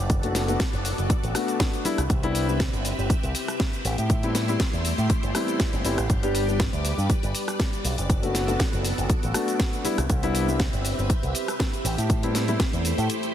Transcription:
Already playing: string machine B3 F#4 A4 D5
0.00 picked electric bass F#1
0.10 kick, closed hi-hat, shaker
0.23 grand piano A3 B3 D4 F#4, closed hi-hat, shaker
0.35 snare, open hi-hat, shaker
0.48 grand piano A3 B3 D4 F#4, closed hi-hat, shaker
0.60 kick, snare, closed hi-hat, shaker
0.73 picked electric bass F#1, closed hi-hat, shaker
0.85 open hi-hat, shaker
0.98 picked electric bass F#1, closed hi-hat, shaker
1.10 kick, closed hi-hat, shaker
1.23 picked electric bass A1, closed hi-hat, shaker
1.34 grand piano A3 B3 D4 F#4, cross-stick, open hi-hat, shaker
1.48 closed hi-hat, shaker
1.60 kick, snare, closed hi-hat, shaker
1.73 closed hi-hat, shaker
1.84 grand piano G3 B3 D4 E4, string machine C4 G4 B4 E5, muted picked electric bass stroke, open hi-hat, shaker
1.98 picked electric bass C2, cross-stick, closed hi-hat, shaker
2.10 picked electric bass C2, kick, closed hi-hat, shaker
2.23 grand piano G3 B3 D4 E4, closed hi-hat, shaker
2.35 open hi-hat, shaker
2.48 grand piano G3 B3 D4 E4, shaker
2.60 kick, snare, closed hi-hat, shaker
2.73 picked electric bass G1, closed hi-hat, shaker
2.85 open hi-hat, shaker
2.98 picked electric bass G1, shaker
3.10 muted picked electric bass stroke, kick, closed hi-hat, shaker
3.23 picked electric bass C2, closed hi-hat, shaker
3.35 open hi-hat, shaker
3.48 cross-stick, closed hi-hat, shaker
3.60 kick, snare, closed hi-hat, shaker
3.73 closed hi-hat, shaker
3.85 picked electric bass A1, string machine A3 E4 C6, open hi-hat, shaker
3.98 picked electric bass A2, closed hi-hat, shaker
4.10 kick, closed hi-hat, shaker
4.23 grand piano G3 B3 C4 E4, closed hi-hat, shaker
4.35 snare, open hi-hat, shaker
4.48 grand piano G3 B3 C4 E4, closed hi-hat, shaker
4.60 kick, snare, closed hi-hat, shaker
4.73 picked electric bass E2, closed hi-hat, shaker
4.85 open hi-hat, shaker
4.98 picked electric bass A2, closed hi-hat, shaker
5.10 kick, closed hi-hat, shaker
5.23 picked electric bass G1, closed hi-hat, shaker
5.34 grand piano G3 B3 C4 E4, cross-stick, open hi-hat, shaker
5.48 closed hi-hat, shaker
5.60 kick, snare, closed hi-hat, shaker
5.73 picked electric bass G1, closed hi-hat, shaker
5.84 picked electric bass G1, grand piano G3 B3 C4 E4, open hi-hat, shaker
5.98 picked electric bass A1, cross-stick, closed hi-hat, shaker
6.10 picked electric bass G1, string machine G3 B4 D5, kick, closed hi-hat, shaker
6.23 grand piano G3 B3 D4 G4, closed hi-hat, shaker
6.35 open hi-hat, shaker
6.48 grand piano G3 B3 D4 G4, shaker
6.60 kick, snare, closed hi-hat, shaker
6.73 picked electric bass D2, closed hi-hat, shaker
6.85 open hi-hat, shaker
6.98 picked electric bass G2, shaker
7.10 muted picked electric bass stroke, kick, closed hi-hat, shaker
7.23 picked electric bass G1, closed hi-hat, shaker
7.35 open hi-hat, shaker
7.48 cross-stick, closed hi-hat, shaker
7.60 kick, snare, closed hi-hat, shaker
7.73 closed hi-hat, shaker
7.84 picked electric bass B1, string machine B3 F#4 A4, open hi-hat, shaker
7.98 picked electric bass F#1, closed hi-hat, shaker
8.10 kick, closed hi-hat, shaker
8.22 grand piano A3 B3 D4 F#4, closed hi-hat, shaker
8.35 snare, open hi-hat, shaker
8.47 grand piano A3 B3 D4 F#4, closed hi-hat, shaker
8.60 kick, snare, closed hi-hat, shaker
8.73 picked electric bass F#1, closed hi-hat, shaker
8.85 open hi-hat, shaker
8.98 picked electric bass F#1, closed hi-hat, shaker
9.10 kick, closed hi-hat, shaker
9.23 picked electric bass A1, closed hi-hat, shaker
9.34 grand piano A3 B3 D4 F#4, cross-stick, open hi-hat, shaker
9.48 closed hi-hat, shaker
9.60 kick, snare, closed hi-hat, shaker
9.73 closed hi-hat, shaker
9.84 grand piano G3 B3 D4 E4, string machine C4 G4 B4 E5, muted picked electric bass stroke, open hi-hat, shaker
9.98 picked electric bass C2, cross-stick, closed hi-hat, shaker
10.10 picked electric bass C2, kick, closed hi-hat, shaker
10.22 grand piano G3 B3 D4 E4, closed hi-hat, shaker
10.35 open hi-hat, shaker
10.48 grand piano G3 B3 D4 E4, shaker
10.60 kick, snare, closed hi-hat, shaker
10.73 picked electric bass G1, closed hi-hat, shaker
10.85 open hi-hat, shaker
10.98 picked electric bass G1, shaker
11.10 muted picked electric bass stroke, kick, closed hi-hat, shaker
11.23 picked electric bass C2, closed hi-hat, shaker
11.35 open hi-hat, shaker
11.48 cross-stick, closed hi-hat, shaker
11.60 kick, snare, closed hi-hat, shaker
11.73 closed hi-hat, shaker
11.84 picked electric bass A1, string machine A3 E4 C5, open hi-hat, shaker
11.98 picked electric bass A2, closed hi-hat, shaker
12.10 kick, closed hi-hat, shaker
12.23 grand piano G3 B3 C4 E4, closed hi-hat, shaker
12.35 snare, open hi-hat, shaker
12.47 grand piano G3 B3 C4 E4, closed hi-hat, shaker
12.60 kick, snare, closed hi-hat, shaker
12.73 picked electric bass E2, closed hi-hat, shaker
12.85 open hi-hat, shaker
12.98 picked electric bass A2, closed hi-hat, shaker
13.10 closed hi-hat, shaker
13.23 closed hi-hat, shaker

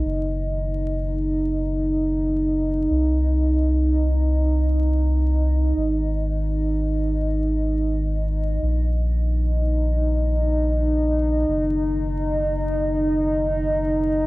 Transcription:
Already playing: ambient pad D#4 D#5
0.05 sub bass F#1
2.90 sub bass C2
5.76 sub bass G#1
8.62 sub bass A#1, ambient pad D#4 D#5
11.48 sub bass F#1

